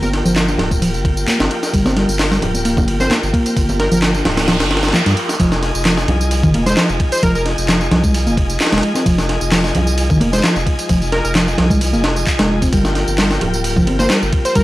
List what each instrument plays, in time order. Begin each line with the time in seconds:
Already playing: sub bass G1, tonewheel organ F3 A#3 G4, picked electric bass A#3
0.02 digital synth lead A#4, tambourine, high conga
0.13 snare, ride
0.25 sub bass G1, picked electric bass F3, tambourine
0.36 snare, clap, ride, tambourine
0.48 picked electric bass D4, tambourine
0.58 sub bass D1, snare, ride, low conga
0.71 kick, tambourine, high conga
0.82 picked electric bass F3, ride, tambourine
0.94 sub bass G1, tambourine
1.05 kick, ride
1.17 tambourine
1.27 picked electric bass A#3, clap, ride, tambourine, high conga
1.40 sub bass G1, picked electric bass C4, snare, tambourine
1.51 ride
1.63 snare, tambourine
1.73 sub bass G1, picked electric bass G3, kick, ride, tambourine
1.86 picked electric bass C4, snare, tambourine, high conga
1.96 picked electric bass G3, snare, ride
2.09 sub bass G1, tambourine
2.19 snare, clap, open hi-hat, tambourine
2.31 picked electric bass G3, snare, tambourine
2.42 sub bass D1, ride, low conga
2.55 tambourine, high conga
2.65 picked electric bass A#3, ride, tambourine
2.77 sub bass G1, kick, tambourine, low conga
2.88 ride
3.00 picked electric bass C4, digital synth lead C5, snare, tambourine
3.10 picked electric bass A#3, snare, clap, ride, tambourine, high conga
3.23 sub bass G1, tambourine
3.33 picked electric bass A#3, kick, ride
3.46 ride, tambourine
3.56 sub bass G1, kick, ride, tambourine, noise sweep
3.69 tambourine, high conga
3.80 digital synth lead A#4, snare, ride
3.92 sub bass G1, picked electric bass F3, digital synth lead A#4, tambourine
4.02 snare, clap, ride, tambourine
4.14 picked electric bass D4, tambourine
4.25 sub bass D1, snare, open hi-hat, low conga
4.37 snare, open hi-hat, tambourine, high conga
4.48 picked electric bass F3, snare, open hi-hat, tambourine
4.60 sub bass G1, snare, open hi-hat, tambourine
4.71 snare, open hi-hat
4.77 snare, open hi-hat
4.83 picked electric bass D4, snare, open hi-hat, tambourine
4.88 snare, open hi-hat
4.93 picked electric bass F3, snare, clap, tambourine, high conga
5.06 sub bass G2, picked electric bass G3, snare, ride, tambourine
5.17 ride
5.29 snare, tambourine
5.40 sub bass F1, picked electric bass F3, tonewheel organ F3 D#4 G#4, kick, ride, tambourine
5.52 snare, tambourine
5.63 snare, ride
5.75 sub bass F1, tambourine
5.85 picked electric bass F3, snare, clap, open hi-hat, tambourine
5.98 snare, tambourine
6.08 sub bass C2, ride, low conga
6.21 tambourine
6.31 ride, tambourine
6.43 sub bass F1, picked electric bass D#3, kick, tambourine
6.54 picked electric bass A#3, ride, high conga
6.66 picked electric bass G#3, digital synth lead C5, snare, tambourine
6.77 picked electric bass F3, snare, clap, ride, tambourine
6.89 sub bass F1, tambourine
7.00 kick, ride
7.12 digital synth lead C5, ride, tambourine
7.23 sub bass F1, picked electric bass F3, digital synth lead A#4, kick, ride, tambourine
7.35 digital synth lead A#4, tambourine
7.46 snare, ride
7.58 sub bass F1, tambourine
7.68 picked electric bass F3, snare, clap, ride, tambourine
7.81 tambourine
7.91 sub bass C2, picked electric bass F3, snare, ride, low conga
8.04 picked electric bass G#3, kick, tambourine
8.14 ride, tambourine
8.27 sub bass F1, picked electric bass A#3, tambourine
8.37 kick, ride
8.50 tambourine
8.60 snare, clap, open hi-hat, tambourine
8.67 snare, open hi-hat
8.72 sub bass F1, picked electric bass G#3, snare, open hi-hat, tambourine
8.78 snare, open hi-hat
8.83 ride
8.95 picked electric bass C4, snare, tambourine
9.05 sub bass F1, picked electric bass F3, kick, ride, tambourine
9.18 snare, tambourine
9.29 snare, ride
9.41 sub bass F1, tambourine
9.52 picked electric bass F3, snare, clap, open hi-hat, tambourine
9.64 snare, tambourine
9.75 sub bass C2, ride, low conga
9.87 tambourine
9.98 ride, tambourine
10.10 sub bass F1, picked electric bass D#3, kick, tambourine
10.20 picked electric bass A#3, ride, high conga
10.33 picked electric bass G#3, digital synth lead C5, snare, tambourine
10.43 picked electric bass F3, snare, clap, ride, tambourine
10.56 sub bass F1, tambourine
10.67 kick, ride
10.79 ride, tambourine
10.89 sub bass F1, picked electric bass F3, kick, ride, tambourine
11.02 tambourine
11.12 digital synth lead A#4, snare, ride
11.24 sub bass F1, digital synth lead A#4, tambourine
11.35 picked electric bass F3, snare, clap, ride, tambourine
11.48 tambourine
11.58 sub bass C2, picked electric bass F3, snare, ride, low conga
11.70 picked electric bass G#3, kick, tambourine
11.81 ride, tambourine
11.93 sub bass F1, picked electric bass A#3, tambourine
12.04 snare, ride
12.16 tambourine
12.27 kick, clap, ride, tambourine
12.39 sub bass F1, picked electric bass G#3, snare, ride, tambourine
12.62 picked electric bass C4, kick, ride, tambourine
12.73 sub bass G1, picked electric bass G3, tonewheel organ A#3 G4, kick, ride, tambourine
12.85 snare, tambourine
12.95 snare, ride
13.08 sub bass G1, tambourine
13.18 picked electric bass G3, snare, clap, open hi-hat, tambourine
13.31 snare, tambourine
13.41 sub bass D1, ride, low conga
13.54 tambourine
13.64 ride, tambourine
13.76 sub bass G1, picked electric bass F3, kick, tambourine
13.87 picked electric bass C4, ride, high conga
13.99 picked electric bass A#3, digital synth lead C5, snare, tambourine
14.10 picked electric bass G3, snare, clap, ride, tambourine
14.22 sub bass G1, tambourine
14.33 kick, ride
14.45 digital synth lead C5, ride, tambourine
14.55 sub bass G1, picked electric bass G3, digital synth lead A#4, kick, ride, tambourine